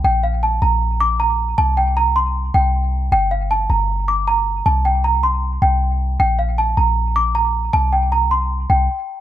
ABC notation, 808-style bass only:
X:1
M:4/4
L:1/8
Q:1/4=156
K:Gm
V:1 name="808-style bass" clef=bass
B,,,3 B,,,4- B,,, | C,,4- C,, C,,3 | G,,,3 G,,,4- G,,, | C,,4- C,, C,,3 |
B,,,3 B,,,4- B,,, | C,,4- C,, C,, z2 |]